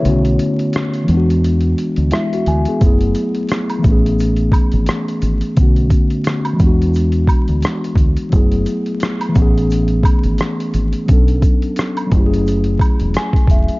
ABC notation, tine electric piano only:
X:1
M:4/4
L:1/16
Q:"Swing 16ths" 1/4=87
K:F#m
V:1 name="Tine electric piano"
[Ec] z8 z3 [G,Ee] F g [B,G]- | [B,G] z12 z3 | z16 | z16 |
z12 g2 e2 |]
V:2 name="Tine electric piano"
[C,D,A,B,CF]6 [E,G,B,DF]8- [E,G,B,DF]2 | [F,A,B,EG]6 [E,A,B,CG]8- [E,A,B,CG]2 | [D,A,B,CF]6 [E,G,B,DF]8- [E,G,B,DF]2 | [F,A,B,EG]6 [E,A,B,CG]8- [E,A,B,CG]2 |
[F,B,CDA]6 [F,A,CE=G^G]8- [F,A,CE=G^G]2 |]